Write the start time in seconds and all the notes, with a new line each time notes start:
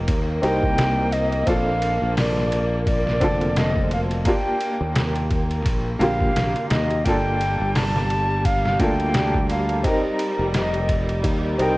Already playing: A#3 C4 D#4 G4 A#4
0.08 D#2, kick, ride
0.42 C2 C4 D#4 G4 A#4 G5, ride
0.63 kick
0.78 snare, ride
1.12 D#5, ride
1.32 ride
1.46 A#1 C4 D4 F4 A4 F5, kick, ride
1.82 ride
2.02 A#1
2.17 D5, snare, open hi-hat
2.37 snare
2.52 ride
2.87 D5, kick, ride
3.07 snare
3.20 F1 D3 C4 F4 A4, kick, ride
3.41 ride
3.56 D#5, snare, ride
3.76 kick
3.91 F5, ride
4.11 ride
4.25 A#3 D4 F4 G4 G5, kick, ride
4.61 ride
4.81 D#2
4.96 snare, ride
5.16 ride
5.31 kick, ride
5.51 ride
5.66 A#1, kick, ride
5.99 A#1 D3 A#3 F4 G4 F5, ride
6.21 kick
6.36 A#1, snare, ride
6.56 ride
6.70 D#2 D#5, snare, ride
6.90 ride
7.04 G1 G3 A#3 D4 F4 A4 G5, kick, ride
7.41 ride
7.60 G1
7.75 A5, snare, open hi-hat
7.96 snare
8.10 ride
8.45 F5, kick, ride
8.65 snare
8.79 D2 A#3 D4 F4 A4 G5, kick, ride
9.00 ride
9.14 snare, ride
9.34 kick
9.50 F5, ride
9.69 ride
9.83 C4 D#4 G4 A#4 D#5, kick, ride
10.19 ride
10.39 F1
10.54 D#5, snare, ride
10.74 ride
10.89 kick, ride
11.09 ride
11.24 D#2, kick, ride
11.58 C2 C4 D#4 G4 A#4 G5, ride